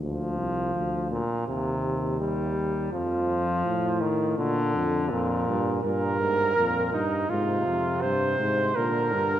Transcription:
0.02 0.40 D2 medium
0.02 1.07 F3 medium
0.38 0.75 C2 medium
0.75 1.21 D2 medium
1.11 1.46 A#2 medium
1.47 2.89 D#2 medium
1.47 2.18 C3 medium
2.20 2.91 G3 medium
2.93 3.64 F2 medium
2.93 4.02 F3 medium
3.66 4.37 A2 medium
4.01 4.38 D#3 medium
4.38 4.76 A#2 medium
4.38 5.12 D3 medium
4.75 5.11 F2 medium
5.11 5.47 F2 medium
5.11 5.83 A#2 medium
5.48 5.83 G2 medium
5.83 6.55 G2 medium
5.83 6.19 A#2 medium
5.83 6.89 A#4 loud
6.20 6.55 G#2 medium
6.56 6.92 F2 medium
6.56 7.03 A#2 medium
6.93 7.29 G2 medium
6.93 7.32 D#4 medium
7.29 7.65 G#2 medium
7.29 8.72 C3 medium
7.29 8.03 F4 medium
7.67 8.05 F2 medium
8.02 8.39 G2 medium
8.02 8.77 C5 medium
8.39 8.75 G#2 medium
8.76 9.15 A#2 medium
8.76 9.40 D3 medium
8.76 9.40 A#4 loud
9.13 9.40 G2 medium

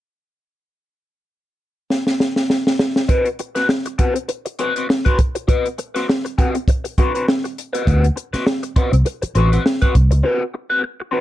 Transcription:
1.90 snare medium
2.07 snare medium
2.20 snare medium
2.36 snare medium
2.50 snare medium
2.67 snare medium
2.79 snare loud
2.96 snare medium
3.09 3.26 C4 medium
3.09 3.27 F#4 medium
3.09 3.27 B4 medium
3.09 kick medium
3.09 closed hi-hat medium
3.25 closed hi-hat soft
3.39 muted overdriven electric guitar stroke soft
3.39 closed hi-hat medium
3.55 3.67 C4 soft
3.55 3.67 F#4 medium
3.55 3.66 B4 medium
3.55 snare soft
3.55 closed hi-hat soft
3.69 muted overdriven electric guitar stroke soft
3.69 snare medium
3.86 muted overdriven electric guitar stroke soft
3.86 closed hi-hat soft
3.99 4.16 C4 medium
3.99 4.14 F#4 medium
3.99 4.13 B4 medium
3.99 kick medium
3.99 closed hi-hat medium
4.15 muted overdriven electric guitar stroke medium
4.15 closed hi-hat soft
4.28 muted overdriven electric guitar stroke soft
4.28 closed hi-hat medium
4.46 muted overdriven electric guitar stroke soft
4.46 closed hi-hat medium
4.59 4.72 C4 medium
4.59 4.73 F#4 medium
4.59 4.73 B4 medium
4.59 closed hi-hat soft
4.76 4.86 C4 soft
4.76 4.87 F#4 soft
4.76 4.86 B4 soft
4.76 closed hi-hat soft
4.88 muted overdriven electric guitar stroke soft
4.88 snare loud
5.05 5.18 C4 medium
5.05 5.18 F#4 medium
5.05 5.19 B4 medium
5.05 kick medium
5.05 closed hi-hat soft
5.19 muted overdriven electric guitar stroke soft
5.19 kick medium
5.19 closed hi-hat medium
5.35 muted overdriven electric guitar stroke medium
5.35 closed hi-hat medium
5.48 5.65 C4 medium
5.48 5.65 F#4 medium
5.48 5.66 B4 medium
5.48 kick medium
5.48 closed hi-hat medium
5.66 closed hi-hat soft
5.78 muted overdriven electric guitar stroke soft
5.78 closed hi-hat medium
5.95 6.06 C4 medium
5.95 6.06 F#4 medium
5.95 6.05 B4 medium
5.95 snare soft
5.95 closed hi-hat soft
6.08 muted overdriven electric guitar stroke soft
6.08 snare medium
6.25 muted overdriven electric guitar stroke soft
6.25 closed hi-hat soft
6.38 6.55 C4 loud
6.38 6.55 F#4 medium
6.38 6.54 B4 medium
6.38 kick loud
6.38 closed hi-hat medium
6.55 muted overdriven electric guitar stroke soft
6.55 closed hi-hat soft
6.68 muted overdriven electric guitar stroke soft
6.68 kick medium
6.68 closed hi-hat medium
6.84 muted overdriven electric guitar stroke soft
6.84 closed hi-hat medium
6.98 7.11 C4 medium
6.98 7.11 F#4 medium
6.98 7.12 B4 medium
6.98 kick medium
6.98 closed hi-hat medium
7.14 7.26 C4 soft
7.14 7.25 F#4 soft
7.14 7.25 B4 medium
7.14 closed hi-hat soft
7.28 muted overdriven electric guitar stroke soft
7.28 snare loud
7.44 muted overdriven electric guitar stroke soft
7.44 closed hi-hat soft
7.58 closed hi-hat medium
7.73 7.85 C4 medium
7.73 7.86 F#4 medium
7.73 7.87 B4 medium
7.73 closed hi-hat medium
7.86 8.09 D2 loud
7.86 8.03 C4 medium
7.86 8.04 F#4 medium
7.86 8.04 B4 medium
7.86 kick medium
7.86 closed hi-hat medium
8.04 closed hi-hat soft
8.16 muted overdriven electric guitar stroke soft
8.16 closed hi-hat medium
8.33 8.44 C4 medium
8.33 8.44 F#4 medium
8.33 8.43 B4 medium
8.33 muted fingered electric bass stroke soft
8.33 snare soft
8.33 closed hi-hat soft
8.46 muted overdriven electric guitar stroke soft
8.46 snare loud
8.63 muted overdriven electric guitar stroke soft
8.63 closed hi-hat soft
8.76 8.93 C4 medium
8.76 8.92 F#4 medium
8.76 8.91 B4 medium
8.76 muted fingered electric bass stroke soft
8.76 kick loud
8.76 closed hi-hat medium
8.92 9.02 C2 medium
8.92 muted overdriven electric guitar stroke soft
8.92 closed hi-hat medium
9.05 muted overdriven electric guitar stroke soft
9.05 closed hi-hat medium
9.22 muted overdriven electric guitar stroke soft
9.22 muted fingered electric bass stroke soft
9.22 closed hi-hat medium
9.35 9.57 A1 medium
9.35 9.49 C4 medium
9.35 9.49 F#4 medium
9.35 9.49 B4 medium
9.35 closed hi-hat medium
9.52 9.63 C4 soft
9.52 9.63 F#4 soft
9.52 9.62 B4 medium
9.52 closed hi-hat soft
9.66 snare loud
9.82 9.94 C4 medium
9.82 9.95 F#4 medium
9.82 9.95 B4 medium
9.82 kick medium
9.82 closed hi-hat soft
9.95 10.11 C2 medium
9.95 muted overdriven electric guitar stroke soft
9.95 kick medium
9.95 closed hi-hat medium
10.11 10.21 C#2 medium
10.11 muted overdriven electric guitar stroke soft
10.11 closed hi-hat medium
10.23 10.41 C4 medium
10.23 10.41 F#4 medium
10.23 10.42 B4 medium
10.54 muted overdriven electric guitar stroke soft
10.70 10.82 C4 medium
10.70 10.81 F#4 medium
10.70 10.81 B4 medium
10.83 muted overdriven electric guitar stroke soft
11.00 muted overdriven electric guitar stroke soft
11.11 11.21 C4 medium
11.11 11.21 F#4 medium
11.11 11.21 B4 medium

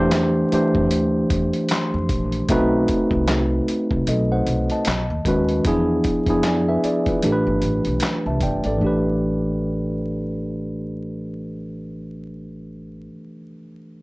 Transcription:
0.00 0.45 E2 medium
0.00 0.52 E3 medium
0.00 0.53 A3 medium
0.00 0.53 D4 medium
0.00 0.54 G4 medium
0.00 0.54 C5 loud
0.11 snare medium
0.11 clap medium
0.11 closed hi-hat medium
0.52 1.92 E3 medium
0.52 1.92 A3 medium
0.52 1.92 D4 medium
0.52 1.92 G4 medium
0.52 1.93 C5 medium
0.52 muted upright bass stroke soft
0.52 closed hi-hat medium
0.75 0.92 F2 medium
0.75 kick medium
0.91 1.26 D2 medium
0.91 closed hi-hat medium
1.30 1.51 E2 medium
1.30 kick medium
1.30 closed hi-hat medium
1.53 closed hi-hat soft
1.69 2.46 C6 medium
1.69 snare medium
1.69 clap medium
1.69 closed hi-hat loud
1.94 2.08 F2 medium
2.09 2.44 A#1 medium
2.09 kick medium
2.09 closed hi-hat medium
2.32 closed hi-hat soft
2.49 2.84 B1 medium
2.49 3.89 A3 loud
2.49 3.89 C4 medium
2.49 3.90 D#4 medium
2.49 3.90 F#4 medium
2.49 3.90 B4 loud
2.49 kick loud
2.49 closed hi-hat medium
2.88 kick medium
2.88 closed hi-hat medium
3.11 3.61 C2 medium
3.11 kick medium
3.27 snare medium
3.27 clap medium
3.27 closed hi-hat medium
3.68 muted upright bass stroke soft
3.68 closed hi-hat medium
3.91 4.05 C2 medium
3.91 kick medium
4.07 4.42 B1 medium
4.07 4.30 A4 soft
4.07 4.30 D#5 medium
4.07 closed hi-hat medium
4.32 4.69 C5 medium
4.32 4.68 F#5 medium
4.47 4.67 B1 medium
4.47 closed hi-hat medium
4.70 5.08 D#5 soft
4.70 5.08 A5 medium
4.70 closed hi-hat soft
4.85 5.07 B1 medium
4.85 snare medium
4.85 clap medium
4.85 closed hi-hat medium
5.10 5.24 D#2 medium
5.25 5.60 D#2 medium
5.25 5.60 D#3 medium
5.25 5.61 G#3 medium
5.25 5.61 C#4 medium
5.25 5.61 F#4 medium
5.25 5.62 B4 medium
5.25 kick medium
5.25 closed hi-hat medium
5.49 closed hi-hat soft
5.65 6.00 E2 medium
5.65 6.18 F3 medium
5.65 6.18 B3 medium
5.65 6.19 D4 medium
5.65 6.19 E4 medium
5.65 6.19 G#4 loud
5.65 kick loud
5.65 closed hi-hat medium
6.04 kick medium
6.04 closed hi-hat medium
6.26 6.76 F2 medium
6.26 6.76 F3 medium
6.26 6.77 B3 medium
6.26 6.77 D4 medium
6.26 6.44 E4 medium
6.26 6.45 G#4 medium
6.26 kick medium
6.26 closed hi-hat soft
6.43 6.67 D5 soft
6.43 6.67 G#5 medium
6.43 snare medium
6.43 clap medium
6.43 closed hi-hat medium
6.68 6.83 B4 medium
6.68 6.83 E5 medium
6.84 7.06 G#4 soft
6.84 7.06 D5 medium
6.84 muted upright bass stroke soft
6.84 closed hi-hat medium
7.06 7.21 E2 medium
7.06 7.45 F4 soft
7.06 7.31 B4 soft
7.06 kick medium
7.06 closed hi-hat soft
7.22 7.43 A1 medium
7.22 8.63 E3 medium
7.22 8.63 A3 medium
7.22 8.63 D4 medium
7.22 8.64 G4 medium
7.22 7.32 A4 medium
7.22 closed hi-hat medium
7.32 8.06 B4 medium
7.47 7.61 G1 medium
7.62 7.83 A1 medium
7.62 closed hi-hat medium
7.85 8.00 B1 medium
7.85 closed hi-hat soft
8.00 snare medium
8.00 clap medium
8.00 closed hi-hat medium
8.26 8.40 C2 medium
8.26 8.41 E5 soft
8.26 8.41 A5 soft
8.40 8.61 G1 medium
8.40 8.64 D5 soft
8.40 8.64 G5 medium
8.40 kick medium
8.40 closed hi-hat medium
8.64 8.79 G#1 medium
8.64 9.03 A4 soft
8.64 9.03 D5 medium
8.64 closed hi-hat soft
8.77 13.08 A1 medium
8.77 13.05 E3 medium
8.77 13.07 A3 medium
8.82 13.10 D4 medium
8.82 13.12 G4 medium
8.87 13.14 B4 medium

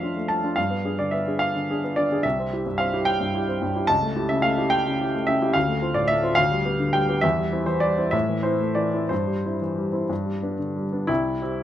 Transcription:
0.00 0.54 F2 soft
0.00 0.30 F3 soft
0.00 0.17 A3 soft
0.00 0.03 D4 soft
0.00 0.15 D4 soft
0.00 0.03 F4 soft
0.00 0.15 F4 soft
0.00 0.59 D5 medium
0.00 0.59 E5 medium
0.00 0.29 F5 medium
0.17 0.38 A3 soft
0.28 0.52 F3 soft
0.28 0.56 A5 medium
0.44 0.56 D4 soft
0.44 0.56 F4 soft
0.56 2.20 G2 soft
0.56 0.98 F5 medium
0.70 0.93 B3 soft
0.85 0.97 D4 soft
0.85 0.98 G#4 soft
0.99 1.22 D3 soft
0.99 1.13 D5 medium
1.11 1.36 B3 soft
1.11 1.40 E5 medium
1.28 1.53 D4 soft
1.28 1.53 G#4 soft
1.39 1.96 F5 medium
1.55 1.78 D3 soft
1.70 1.82 D4 soft
1.70 1.82 G#4 soft
1.84 2.06 B3 soft
1.96 2.19 D3 soft
1.96 2.24 D5 medium
2.12 2.24 D4 soft
2.12 2.24 G#4 soft
2.23 3.85 C2 medium
2.23 2.78 E5 medium
2.39 2.60 C4 soft
2.53 2.64 E4 soft
2.53 2.65 G4 soft
2.66 2.87 G2 soft
2.78 3.01 C4 soft
2.78 3.05 F5 medium
2.93 3.18 E4 soft
2.93 3.18 G4 soft
3.05 3.61 G5 medium
3.20 3.42 G2 soft
3.34 3.46 E4 soft
3.34 3.47 G4 soft
3.48 3.70 C4 soft
3.62 3.83 G2 soft
3.76 3.88 E4 soft
3.76 3.88 G4 soft
3.87 5.52 C#2 medium
3.87 4.29 A5 loud
4.03 4.25 A3 soft
4.16 4.28 E4 soft
4.16 4.29 G4 soft
4.29 4.52 C#3 soft
4.29 4.43 E5 medium
4.42 4.66 A3 soft
4.42 4.71 F5 medium
4.58 4.83 E4 soft
4.58 4.83 G4 soft
4.70 5.27 G5 loud
4.86 5.09 C#3 soft
5.01 5.13 E4 soft
5.01 5.13 G4 soft
5.15 5.37 A3 soft
5.27 5.50 C#3 soft
5.27 5.55 E5 medium
5.42 5.54 E4 soft
5.42 5.54 G4 soft
5.53 6.36 D2 medium
5.53 5.95 F5 medium
5.68 5.90 A3 soft
5.82 5.95 C4 soft
5.82 5.95 F4 soft
5.94 6.18 A2 soft
5.94 6.09 D5 medium
6.08 6.32 A3 soft
6.08 6.37 E5 medium
6.23 6.36 C4 soft
6.23 6.36 F4 soft
6.35 7.20 D2 medium
6.35 6.93 F5 loud
6.51 6.74 G3 soft
6.65 6.78 B3 soft
6.65 6.79 G4 soft
6.79 7.03 D3 soft
6.93 7.17 G3 soft
6.93 7.23 G5 medium
7.09 7.22 B3 soft
7.09 7.22 G4 soft
7.21 8.11 E2 medium
7.21 7.67 E5 medium
7.38 7.61 G3 soft
7.52 7.66 C4 soft
7.52 7.66 E4 soft
7.66 7.92 E3 soft
7.66 7.82 C5 medium
7.80 8.07 G3 soft
7.80 8.12 D5 medium
7.98 8.12 C4 soft
7.98 8.12 E4 soft
8.11 9.07 A2 medium
8.11 8.44 E5 medium
8.29 8.55 E3 soft
8.43 8.59 C4 soft
8.43 8.59 E4 soft
8.43 8.76 C5 medium
8.60 8.87 A3 soft
8.75 9.03 E3 soft
8.75 9.09 D5 medium
8.94 9.09 C4 soft
8.94 9.09 E4 soft
9.09 10.07 G2 medium
9.09 10.09 C5 medium
9.27 9.54 G3 soft
9.45 9.60 C4 soft
9.45 9.60 E4 soft
9.62 9.87 E3 soft
9.78 10.03 G3 soft
9.92 10.07 C4 soft
9.92 10.08 E4 soft
10.09 11.05 G2 medium
10.25 10.52 G3 soft
10.43 10.57 B3 soft
10.43 10.57 D4 soft
10.59 10.85 D3 soft
10.76 11.02 G3 soft
10.92 11.07 B3 soft
10.92 11.07 D4 soft
11.07 11.40 C2 medium
11.07 11.63 E4 medium
11.42 11.63 G4 soft
11.42 11.63 C5 soft
11.42 11.63 E5 soft

